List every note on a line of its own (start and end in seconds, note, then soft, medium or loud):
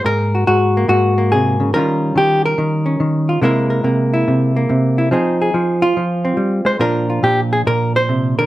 0.00 0.77 A#3 soft
0.04 0.46 G#2 medium
0.04 0.89 A#4 loud
0.35 0.46 F#4 soft
0.47 0.87 G#2 medium
0.47 0.88 F#4 medium
0.77 1.18 A#3 soft
0.88 1.71 G#2 medium
0.88 1.73 F#4 medium
1.18 1.76 A#3 soft
1.32 1.60 C3 medium
1.32 1.73 G#4 medium
1.60 1.73 C#3 medium
1.74 2.14 D#3 medium
1.74 3.41 G3 soft
1.74 2.85 C#4 soft
1.74 3.28 F4 soft
1.74 2.15 A#4 loud
2.15 2.57 D#3 medium
2.15 2.44 G4 medium
2.46 3.43 A#4 medium
2.58 2.99 D#3 medium
2.86 3.40 C#4 soft
3.00 3.40 D#3 medium
3.29 3.40 F4 soft
3.42 3.83 C3 medium
3.42 5.11 G#3 medium
3.42 3.83 A#3 medium
3.42 4.12 E4 medium
3.42 3.69 A#4 medium
3.70 5.09 A#4 medium
3.84 4.26 C3 medium
3.84 4.54 A#3 soft
4.14 4.97 E4 medium
4.28 4.69 C3 medium
4.56 5.12 A#3 soft
4.70 5.11 C3 medium
4.98 5.10 E4 medium
5.11 5.54 F3 medium
5.11 6.23 C4 soft
5.11 5.82 D#4 soft
5.11 5.41 G#4 soft
5.42 6.66 G#4 soft
5.54 5.96 F3 medium
5.82 6.80 F4 medium
5.97 6.37 F3 medium
6.25 6.79 C4 soft
6.37 6.65 G3 medium
6.65 6.80 G#3 medium
6.65 6.80 C5 medium
6.79 7.22 A#2 medium
6.79 8.46 F3 soft
6.79 8.46 D4 soft
6.79 7.08 F4 soft
6.79 7.23 A#4 medium
7.10 8.46 F4 soft
7.23 7.65 A#2 medium
7.23 7.40 G4 medium
7.53 7.61 G#4 medium
7.67 8.46 A#2 medium
7.67 7.95 A#4 loud
7.96 8.37 C5 loud
8.09 8.37 C3 medium
8.39 8.46 D3 medium
8.39 8.46 A#4 medium